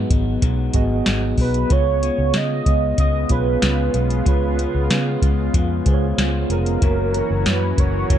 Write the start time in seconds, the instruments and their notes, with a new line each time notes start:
Already playing: clean electric guitar G#2 F#3 B3, tine electric piano B3 F#4 G#4 D#5 F#5
0.10 fingered electric bass G#1, clean electric guitar F#3 B3 D#4, kick, closed hi-hat
0.42 fingered electric bass B1, clean electric guitar G#2 F#3 B3 D#4, kick, closed hi-hat
0.74 fingered electric bass G#1, clean electric guitar F#3 B3 D#4, tine electric piano B3 F#4 G#4 D#5, kick, closed hi-hat
1.06 fingered electric bass G#1, clean electric guitar G#2 F#3 B3 D#4, snare, closed hi-hat
1.38 fingered electric bass B1, clean electric guitar F#3 B3 D#4, soft synth lead B4, kick, open hi-hat
1.54 closed hi-hat
1.69 fingered electric bass C#2, analog synth pad C#3 G#3 B3 F4, clean electric guitar C#3 G#3 B3 F4, tine electric piano B3 F4 G#4 C#5, soft synth lead C#5, kick, closed hi-hat
2.02 clean electric guitar G#3 B3 F4, closed hi-hat
2.18 fingered electric bass C#2
2.34 clean electric guitar C#3 G#3 B3 F4, fingered electric bass C#3, soft synth lead D#5, snare, closed hi-hat
2.66 fingered electric bass C#2, clean electric guitar G#3 B3 F4, kick, closed hi-hat
2.98 fingered electric bass C#2, clean electric guitar C#3 G#3 B3 F4, soft synth lead D#5, kick, closed hi-hat
3.29 fingered electric bass B1, clean electric guitar G#3 B3 F4, tine electric piano B3 F4 G#4 C#5, soft synth lead B4, kick, closed hi-hat
3.62 fingered electric bass C#2, clean electric guitar C#3 G#3 B3 F4, snare, closed hi-hat
3.93 fingered electric bass B1, clean electric guitar G#3 B3 F4, closed hi-hat
4.10 closed hi-hat
4.25 fingered electric bass C#2, clean electric guitar C#3 G#3 B3 F4, tine electric piano B3 F4 G#4 C#5, soft synth lead B4, kick, closed hi-hat
4.58 clean electric guitar G#3 B3 F4, closed hi-hat
4.75 fingered electric bass C#2
4.90 clean electric guitar C#3 G#3 B3 F4, fingered electric bass C#3, snare, closed hi-hat
5.22 fingered electric bass C#2, clean electric guitar G#3 B3 F4, kick, closed hi-hat
5.54 fingered electric bass F2, clean electric guitar C#3 G#3 B3 F4, kick, closed hi-hat
5.85 fingered electric bass C#2, clean electric guitar G#3 B3 F4, tine electric piano B3 F4 G#4 C5, kick, closed hi-hat
5.94 tine electric piano C#5
6.18 fingered electric bass C#2, clean electric guitar C#3 G#3 B3 F4, snare, closed hi-hat
6.50 fingered electric bass F1, clean electric guitar G#3 B3 F4, soft synth lead A#4, closed hi-hat
6.66 closed hi-hat
6.81 fingered electric bass F#1, analog synth pad E3 F#3 C#4 F#4, clean electric guitar F#3 C#4 E4 A#4, tine electric piano A#3 E4 F#4 C#5, kick, closed hi-hat
7.14 clean electric guitar C#4 E4 A#4, closed hi-hat
7.30 fingered electric bass F#1
7.46 fingered electric bass F#2, clean electric guitar F#3 C#4 E4, soft synth lead B4, snare, closed hi-hat
7.78 fingered electric bass F#1, clean electric guitar C#4 E4 A#4, soft synth lead C#5, kick, closed hi-hat
8.10 fingered electric bass F#1, clean electric guitar F#3 C#4 E4 A#4, soft synth lead C#5, kick, closed hi-hat